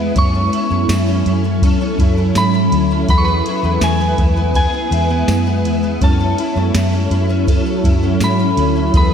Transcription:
Already playing: fingered electric bass E2, ambient pad G#3 B3 E4, twelve-string acoustic guitar B3 E4 G#4, synth bell G#5
0.16 fingered electric bass F#2, ambient pad F#3 C#4 A4 G#5, twelve-string acoustic guitar C#4 A4, synth bell C#6, kick, ride
0.34 twelve-string acoustic guitar C#4
0.53 twelve-string acoustic guitar E4, ride
0.70 fingered electric bass F#2, twelve-string acoustic guitar C#4
0.89 fingered electric bass F#2, twelve-string acoustic guitar E4, snare, ride, tambourine
1.07 twelve-string acoustic guitar C#4
1.26 fingered electric bass F#2, twelve-string acoustic guitar E4, ride
1.44 twelve-string acoustic guitar C#4
1.62 twelve-string acoustic guitar C#4 A4, kick, ride
1.81 twelve-string acoustic guitar C#4
1.99 fingered electric bass F#2, twelve-string acoustic guitar E4, kick, ride
2.17 twelve-string acoustic guitar C#4
2.35 fingered electric bass G#2, twelve-string acoustic guitar E4, synth bell B5, snare, ride, tambourine
2.54 twelve-string acoustic guitar C#4
2.72 fingered electric bass D2, twelve-string acoustic guitar E4, ride
2.91 twelve-string acoustic guitar C#4
3.08 fingered electric bass E2, ambient pad G#3 B3 E4, twelve-string acoustic guitar B3 G#4, synth bell B5, kick, ride
3.18 synth bell C#6
3.25 twelve-string acoustic guitar B3, synth bell B5
3.46 twelve-string acoustic guitar E4, ride
3.63 fingered electric bass E2, twelve-string acoustic guitar B3
3.81 fingered electric bass E2, twelve-string acoustic guitar E4, synth bell G#5, snare, ride, tambourine
4.00 twelve-string acoustic guitar B3
4.18 fingered electric bass E2, twelve-string acoustic guitar E4, kick, ride
4.36 twelve-string acoustic guitar B3
4.54 twelve-string acoustic guitar B3 G#4, synth bell G#5, kick, ride
4.73 twelve-string acoustic guitar B3
4.91 fingered electric bass E2, twelve-string acoustic guitar E4, ride
5.10 twelve-string acoustic guitar B3
5.28 fingered electric bass F#2, twelve-string acoustic guitar E4, snare, ride, tambourine
5.46 twelve-string acoustic guitar B3
5.64 fingered electric bass E2, twelve-string acoustic guitar E4, ride
5.83 twelve-string acoustic guitar B3
6.01 fingered electric bass F#2, ambient pad F#3 C#4 F#4 A4, twelve-string acoustic guitar C#4 A4, synth bell A5, kick, ride
6.20 twelve-string acoustic guitar C#4
6.38 twelve-string acoustic guitar E4, ride
6.56 fingered electric bass F#2, twelve-string acoustic guitar C#4
6.74 fingered electric bass F#2, twelve-string acoustic guitar E4, snare, ride, tambourine
6.93 twelve-string acoustic guitar C#4
7.10 fingered electric bass F#2, twelve-string acoustic guitar E4, ride
7.29 twelve-string acoustic guitar C#4
7.47 twelve-string acoustic guitar C#4 A4, kick, ride
7.66 twelve-string acoustic guitar C#4
7.84 fingered electric bass F#2, twelve-string acoustic guitar E4, kick, ride
8.03 twelve-string acoustic guitar C#4
8.20 fingered electric bass G#2, twelve-string acoustic guitar E4, synth bell B5, snare, ride, tambourine
8.39 twelve-string acoustic guitar C#4
8.57 fingered electric bass D2, twelve-string acoustic guitar E4, ride
8.76 twelve-string acoustic guitar C#4
8.94 fingered electric bass E2, twelve-string acoustic guitar B3 G#4, synth bell B5, kick, ride

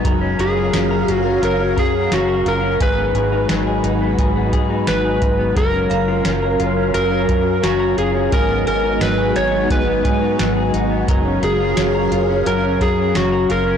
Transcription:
Already playing: clean electric guitar G#2 B3 D#4
0.04 fingered electric bass F#1, clean electric guitar F#3 A#4, string machine F#3 C#4 A#4 F5, kick, closed hi-hat
0.21 clean electric guitar C#4
0.39 fingered electric bass F#1, electric slide guitar G#4, clean electric guitar A#4, closed hi-hat
0.56 clean electric guitar F4
0.73 fingered electric bass F#1, clean electric guitar C#4, snare, closed hi-hat
0.91 clean electric guitar A#4
1.08 fingered electric bass F#1, clean electric guitar F4, closed hi-hat
1.15 electric slide guitar F#4
1.25 clean electric guitar C#4
1.42 fingered electric bass F#1, clean electric guitar F#3 A#4, electric slide guitar A#4, closed hi-hat
1.59 clean electric guitar C#4
1.77 fingered electric bass F#2, electric slide guitar G#4, clean electric guitar A#4, kick, closed hi-hat
2.11 fingered electric bass F#1, clean electric guitar C#4, electric slide guitar F#4, snare, closed hi-hat
2.29 clean electric guitar A#4
2.46 fingered electric bass F#1, clean electric guitar F4, electric slide guitar A#4, closed hi-hat
2.63 clean electric guitar C#4
2.80 fingered electric bass G#1, clean electric guitar G#2 G#4, string machine G#3 D#4 F#4 B4, electric slide guitar B4, kick, closed hi-hat
2.98 clean electric guitar B3
3.15 fingered electric bass G#1, clean electric guitar G#4, closed hi-hat
3.32 clean electric guitar D#4
3.49 fingered electric bass G#1, clean electric guitar F#3, snare, closed hi-hat
3.67 clean electric guitar G#4
3.84 fingered electric bass G#1, clean electric guitar D#4, closed hi-hat
4.01 clean electric guitar B3
4.18 fingered electric bass G#1, clean electric guitar G#2 G#4, kick, closed hi-hat
4.36 clean electric guitar B3
4.53 fingered electric bass G#2, clean electric guitar G#4, kick, closed hi-hat
4.70 clean electric guitar D#4
4.87 fingered electric bass G#1, clean electric guitar F#3, electric slide guitar B4, snare, closed hi-hat
5.05 clean electric guitar G#4
5.22 fingered electric bass G#1, clean electric guitar D#4, kick, closed hi-hat
5.39 clean electric guitar B3
5.56 fingered electric bass F#1, clean electric guitar F#3 A#4, string machine F#3 C#4 A#4 F5, electric slide guitar A#4, kick, closed hi-hat
5.74 clean electric guitar C#4
5.90 fingered electric bass F#1, clean electric guitar A#4, synth bell F5, closed hi-hat
6.08 clean electric guitar F4
6.25 fingered electric bass F#1, clean electric guitar C#4, snare, closed hi-hat
6.42 clean electric guitar A#4
6.60 fingered electric bass F#1, clean electric guitar F4, closed hi-hat
6.77 clean electric guitar C#4
6.94 fingered electric bass F#1, clean electric guitar F#3 A#4, electric slide guitar A#4, closed hi-hat
7.11 clean electric guitar C#4
7.29 fingered electric bass F#2, clean electric guitar A#4, kick, closed hi-hat
7.63 fingered electric bass F#1, clean electric guitar C#4, electric slide guitar F#4, snare, closed hi-hat
7.80 clean electric guitar A#4
7.97 fingered electric bass F#1, clean electric guitar F4, electric slide guitar G#4, closed hi-hat
8.14 clean electric guitar C#4
8.32 fingered electric bass G#1, clean electric guitar G#2 G#4, string machine G#3 B3 D#4 F#4, electric slide guitar A#4, kick, closed hi-hat
8.49 clean electric guitar B3
8.67 fingered electric bass G#1, clean electric guitar G#4, electric slide guitar A#4, closed hi-hat
8.84 clean electric guitar D#4
9.01 fingered electric bass G#1, clean electric guitar F#3, electric slide guitar B4, snare, closed hi-hat
9.18 clean electric guitar G#4
9.35 fingered electric bass G#1, clean electric guitar D#4, electric slide guitar C#5, closed hi-hat
9.52 clean electric guitar B3
9.70 fingered electric bass G#1, clean electric guitar G#2 G#4, electric slide guitar B4, kick, closed hi-hat
9.87 clean electric guitar B3
10.05 fingered electric bass G#2, clean electric guitar G#4, kick, closed hi-hat
10.22 clean electric guitar D#4
10.39 fingered electric bass G#1, clean electric guitar F#3, snare, closed hi-hat
10.57 clean electric guitar G#4
10.74 fingered electric bass G#1, clean electric guitar D#4, closed hi-hat
10.91 clean electric guitar B3
11.08 fingered electric bass F#1, clean electric guitar F#3 A#4, string machine F#3 C#4 A#4 F5, kick, closed hi-hat
11.26 clean electric guitar C#4
11.43 fingered electric bass F#1, electric slide guitar G#4, clean electric guitar A#4, closed hi-hat
11.60 clean electric guitar F4
11.77 fingered electric bass F#1, clean electric guitar C#4, snare, closed hi-hat
11.95 clean electric guitar A#4
12.12 fingered electric bass F#1, clean electric guitar F4, closed hi-hat
12.29 clean electric guitar C#4
12.46 fingered electric bass F#1, clean electric guitar F#3 A#4, electric slide guitar A#4, closed hi-hat
12.64 clean electric guitar C#4
12.81 fingered electric bass F#2, electric slide guitar G#4, clean electric guitar A#4, kick, closed hi-hat
13.15 fingered electric bass F#1, clean electric guitar C#4, electric slide guitar F#4, snare, closed hi-hat
13.32 clean electric guitar A#4
13.49 fingered electric bass F#1, clean electric guitar F4, electric slide guitar A#4, closed hi-hat
13.67 clean electric guitar C#4

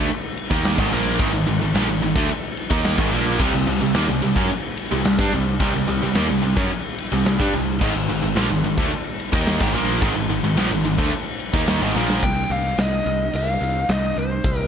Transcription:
0.09 ride
0.37 ride
0.51 picked electric bass D#2, distorted electric guitar D#3 A#3 D#4, kick
0.65 snare, ride
0.78 picked electric bass G#1, distorted electric guitar G#2 D#3, kick
0.92 picked electric bass A#1, distorted electric guitar A#2 F3 A#3, ride
1.19 picked electric bass G#1, distorted electric guitar G#2 D#3, kick, ride
1.33 picked electric bass G#1, distorted electric guitar G#2 D#3
1.46 picked electric bass G#1, distorted electric guitar G#2 D#3, ride
1.61 picked electric bass G#1, distorted electric guitar G#2 D#3
1.75 picked electric bass A#1, distorted electric guitar A#2 F3, snare, ride
1.89 picked electric bass G#1, distorted electric guitar G#2 D#3
2.02 picked electric bass G#1, distorted electric guitar G#2 D#3, ride
2.15 picked electric bass D2, distorted electric guitar D3 A3, kick
2.29 ride
2.57 ride
2.70 picked electric bass D#2, distorted electric guitar D#3 A#3 D#4, kick
2.84 snare, ride
2.97 picked electric bass G#1, distorted electric guitar G#2 D#3, kick
3.12 picked electric bass A#1, distorted electric guitar A#2 F3 A#3, ride
3.39 picked electric bass C2, distorted electric guitar C3 G3, kick, crash
3.54 picked electric bass C2, distorted electric guitar C3 G3
3.67 picked electric bass C2, distorted electric guitar C3 G3, ride
3.81 picked electric bass C2, distorted electric guitar C3 G3
3.94 picked electric bass D#2, distorted electric guitar D#3 A#3, snare, ride
4.09 picked electric bass C2, distorted electric guitar C3 G3
4.22 picked electric bass C2, distorted electric guitar C3 G3, ride
4.36 picked electric bass F#2, distorted electric guitar F#3 C#4, kick
4.50 ride
4.77 ride
4.92 picked electric bass C2, distorted electric guitar C3 G3
5.05 picked electric bass C2, distorted electric guitar C3 G3, snare, ride
5.18 picked electric bass G2, distorted electric guitar G3 D4, kick
5.32 picked electric bass C2, distorted electric guitar C3 G3, ride
5.60 picked electric bass C2, distorted electric guitar C3 G3, kick, ride
5.75 picked electric bass C2, distorted electric guitar C3 G3
5.88 picked electric bass C2, distorted electric guitar C3 G3, ride
6.02 picked electric bass C2, distorted electric guitar C3 G3
6.15 picked electric bass D#2, distorted electric guitar D#3 A#3, snare, ride
6.30 picked electric bass C2, distorted electric guitar C3 G3
6.43 picked electric bass C2, distorted electric guitar C3 G3, ride
6.57 picked electric bass F#2, distorted electric guitar F#3 C#4, kick
6.70 ride
6.98 ride
7.12 picked electric bass C2, distorted electric guitar C3 G3
7.26 picked electric bass C2, distorted electric guitar C3 G3, snare, ride
7.40 picked electric bass G2, distorted electric guitar G3 D4, kick
7.54 picked electric bass C2, distorted electric guitar C3 G3, ride
7.81 picked electric bass G#1, distorted electric guitar G#2 D#3, kick, crash
7.95 picked electric bass G#1, distorted electric guitar G#2 D#3
8.09 picked electric bass G#1, distorted electric guitar G#2 D#3, ride
8.22 picked electric bass G#1, distorted electric guitar G#2 D#3
8.36 picked electric bass A#1, distorted electric guitar A#2 F3, snare, ride
8.50 picked electric bass G#1, distorted electric guitar G#2 D#3
8.64 picked electric bass G#1, distorted electric guitar G#2 D#3, ride
8.78 picked electric bass D2, distorted electric guitar D3 A3, kick
8.92 ride
9.20 ride
9.32 picked electric bass D#2, distorted electric guitar D#3 A#3 D#4, kick
9.47 snare, ride
9.59 picked electric bass G#1, distorted electric guitar G#2 D#3, kick
9.73 picked electric bass A#1, distorted electric guitar A#2 F3 A#3, ride
10.02 picked electric bass G#1, distorted electric guitar G#2 D#3, kick, ride
10.15 picked electric bass G#1, distorted electric guitar G#2 D#3
10.29 picked electric bass G#1, distorted electric guitar G#2 D#3, ride
10.43 picked electric bass G#1, distorted electric guitar G#2 D#3
10.56 picked electric bass A#1, distorted electric guitar A#2 F3, snare, ride
10.71 picked electric bass G#1, distorted electric guitar G#2 D#3
10.84 picked electric bass G#1, distorted electric guitar G#2 D#3, ride
10.98 picked electric bass D2, distorted electric guitar D3 A3, kick
11.12 ride
11.40 ride
11.54 picked electric bass D#2, distorted electric guitar D#3 A#3 D#4, kick
11.67 snare, ride
11.81 picked electric bass G#1, distorted electric guitar G#2 D#3
11.94 picked electric bass A#1, distorted electric guitar A#2 F3 A#3, snare
12.10 snare
12.23 picked electric bass C2, lead electric guitar G5, kick, crash
12.50 picked electric bass C2, lead electric guitar F5, closed hi-hat
12.78 picked electric bass C2, lead electric guitar D#5, snare, closed hi-hat
13.06 picked electric bass C2, closed hi-hat
13.33 picked electric bass C2, lead electric guitar F5, closed hi-hat
13.61 picked electric bass C2, closed hi-hat
13.89 picked electric bass C2, lead electric guitar D#5, snare, closed hi-hat
14.17 picked electric bass C2, lead electric guitar C5, closed hi-hat
14.44 picked electric bass C2, kick, closed hi-hat

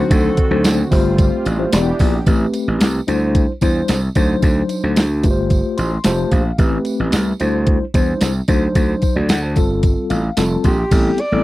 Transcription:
Already playing: analog synth pad D3 D#3 C4 F#4, tine electric piano F#3 D4 D#4 C5, alto saxophone F#4
0.11 slap bass D2, alto saxophone A4, kick, closed hi-hat, tambourine
0.37 kick, closed hi-hat
0.51 slap bass D2, tine electric piano F#3 D4 D#4 C5
0.64 slap bass D2, snare, closed hi-hat, tambourine
0.91 slap bass G1, analog synth pad G3 F4, tine electric piano A3 F4 G4 C5, kick, open hi-hat, tambourine
1.18 kick, closed hi-hat, tambourine
1.45 slap bass A1, closed hi-hat, tambourine
1.59 tine electric piano A3 F4 G4 C5
1.72 slap bass E1, analog synth pad E3 B3 D4 G4, tine electric piano B3 E4 G4 D5, snare, closed hi-hat, tambourine
1.99 slap bass A#1, kick, open hi-hat, tambourine
2.26 slap bass A1, tine electric piano A3 C4 G4 B4, kick, closed hi-hat, tambourine
2.54 closed hi-hat, tambourine
2.68 slap bass A1
2.81 slap bass C2, snare, closed hi-hat, tambourine
3.07 slap bass D2, tine electric piano G3 D4 E4 C5, closed hi-hat, tambourine
3.35 kick, closed hi-hat, tambourine
3.61 slap bass E2, tine electric piano G3 D4 E4 C5, kick, closed hi-hat, tambourine
3.88 slap bass C2, snare, closed hi-hat, tambourine
4.15 slap bass D2, tine electric piano F#3 D4 D#4 C5, kick, closed hi-hat, tambourine
4.42 slap bass D2, kick, closed hi-hat, tambourine
4.69 closed hi-hat, tambourine
4.84 slap bass D2
4.96 slap bass D2, snare, closed hi-hat, tambourine
5.23 slap bass G1, tine electric piano A3 F4 G4 B4, kick, closed hi-hat, tambourine
5.31 tine electric piano C5
5.50 kick, closed hi-hat, tambourine
5.78 slap bass A1, tine electric piano C6, closed hi-hat, tambourine
6.04 slap bass F1, tine electric piano A3 F4 G4 C5 A5, snare, closed hi-hat, tambourine
6.31 slap bass A#1, tine electric piano F5, kick, closed hi-hat, tambourine
6.58 slap bass A1, tine electric piano A3 C4 G4 B4, kick, closed hi-hat, tambourine
6.85 closed hi-hat, tambourine
7.00 slap bass A1
7.12 slap bass C2, snare, closed hi-hat, tambourine
7.40 slap bass D2, tine electric piano G3 D4 E4 C5, closed hi-hat, tambourine
7.67 kick, closed hi-hat
7.94 slap bass E2, tine electric piano G3 D4 E4 C5, kick, closed hi-hat, tambourine
8.21 slap bass C2, snare, closed hi-hat, tambourine
8.48 slap bass D2, tine electric piano F#3 D4 D#4 C5, kick, closed hi-hat, tambourine
8.75 slap bass D2, kick, closed hi-hat, tambourine
9.02 tine electric piano D#4 C5, kick, closed hi-hat, tambourine
9.16 slap bass D2, tine electric piano F#4 D5
9.29 slap bass D2, tine electric piano A4 F#5, snare, closed hi-hat, tambourine
9.42 tine electric piano C5 A5
9.56 slap bass G1, tine electric piano G3 C4 F4 A4, kick, closed hi-hat, tambourine
9.83 kick, closed hi-hat, tambourine
10.10 slap bass A1, tine electric piano F5, closed hi-hat, tambourine
10.37 slap bass F1, tine electric piano G3 C4 F4 A4 A5, snare, closed hi-hat, tambourine
10.64 slap bass A#1, alto saxophone G4, tine electric piano C6, kick, closed hi-hat, tambourine
10.91 slap bass A1, tine electric piano G3 B3 C4 E4 A4, kick, closed hi-hat, crash, tambourine
11.18 alto saxophone D5, closed hi-hat
11.32 slap bass A1, tine electric piano G3 B3 C4 E4 A4

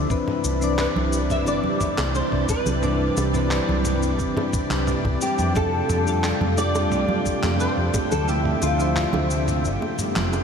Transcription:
Already playing: synth keys F3 D4 E4 D5, string machine D4 E4
0.09 string machine C3 G3 D5, synth keys E3 C4 D4 B4, synth texture G4 G5, kick, shaker
0.28 mid tom, high bongo
0.44 fingered electric bass C2, shaker
0.60 synth keys E3 C4 D4 D5, shaker
0.78 nylon-string guitar B4, clap, mid tom, high bongo, shaker
0.96 fingered electric bass C2, low conga
1.13 shaker
1.30 nylon-string guitar E5, mid tom, shaker
1.46 fingered electric bass G1, nylon-string guitar D5, high bongo, shaker
1.64 low conga
1.81 kick, mid tom, shaker
1.98 fingered electric bass C2, clap, high bongo, high conga, shaker
2.15 nylon-string guitar C5, shaker
2.32 fingered electric bass C2, mid tom
2.49 nylon-string guitar B4, kick, shaker
2.66 fingered electric bass C2, high bongo, low conga, shaker
2.82 synth keys E3 C4 D4 D5, mid tom, high conga, shaker
3.17 fingered electric bass C2, high bongo, shaker
3.32 synth keys E3 C4 D4 B4, mid tom, shaker
3.51 clap, shaker
3.69 fingered electric bass C2, low conga
3.85 mid tom, high bongo, shaker
4.03 shaker
4.19 fingered electric bass G1, kick, shaker
4.37 mid tom, high bongo
4.53 kick, shaker
4.70 fingered electric bass C2, clap, low conga, shaker
4.87 mid tom, shaker
5.05 fingered electric bass C2, kick, high bongo
5.21 nylon-string guitar G4, shaker
5.39 fingered electric bass F2, mid tom, shaker
5.54 synth keys G3 D4 F4 A4, string machine G3 A3 F4, nylon-string guitar A4, kick, high bongo, shaker
5.90 fingered electric bass F2, mid tom, shaker
6.05 synth keys G3 D4 F4 A4, shaker
6.24 clap, high bongo, shaker
6.41 fingered electric bass F2, mid tom, low conga
6.58 nylon-string guitar D5, shaker
6.75 high bongo, shaker
6.92 fingered electric bass C2, mid tom, shaker
7.09 low conga
7.26 kick, shaker
7.43 fingered electric bass F2, clap, mid tom, high bongo, high conga, shaker
7.60 nylon-string guitar C5, shaker
7.78 fingered electric bass F2
7.94 kick, mid tom, high bongo, shaker
8.11 fingered electric bass D2, nylon-string guitar A4, low conga, shaker
8.27 synth keys F3 D4 E4 E5, string machine F3 E5, nylon-string guitar G4, high conga, shaker
8.45 mid tom
8.62 fingered electric bass D2, nylon-string guitar F4, high bongo, shaker
8.78 synth keys F3 D4 C5 E5, shaker
8.96 clap, mid tom, shaker
9.13 fingered electric bass D2, high bongo, low conga
9.31 shaker
9.48 mid tom, shaker
9.65 fingered electric bass G1, string machine D3 G3 B3 F4, shaker
9.82 high bongo, high conga
9.99 mid tom, shaker
10.16 fingered electric bass F1, clap, low conga, shaker
10.33 high bongo, shaker

